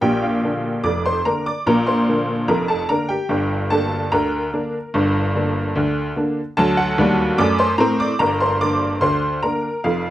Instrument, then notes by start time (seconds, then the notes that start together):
honky-tonk piano
0.01 A#1 A#2 G4 G5
0.22 F4 F5
0.43 D3 A#3 D4
0.84 F1 F2 D5 D6
1.06 C5 C6
1.25 D3 A#3 D4 A#4 A#5
1.46 D5 D6
1.66 A#1 A#2 A#4 A#5
1.87 C5 C6
2.08 D3 A#3 D4
2.48 F1 F2 A#4 A#5
2.68 A4 A5
2.89 D3 A#3 D4 A#4 A#5
3.09 G4 G5
3.29 G1 G2
3.70 D3 A#3 D4 A4 A5
4.12 D2 D3 A#4 A#5
4.53 D3 A#3 D4
4.94 G1 G2
5.35 D3 A#3 D4
5.75 D2 D3
6.16 D3 A#3 D4
6.57 D2 F#3 A4 A5
6.77 F#4 F#5
6.98 D#2 G3
7.38 F#2 A3 D5 D6
7.59 C5 C6
7.78 A2 C4 A#4 A#5
8.00 D5 D6
8.19 G1 G2 A#4 A#5
8.40 C5 C6
8.61 D3 A#3 D4 D5 D6
9.01 D2 D3 C5 C6
9.43 D3 A#3 D4 A#4 A#5
9.84 F1 F2 F4 F5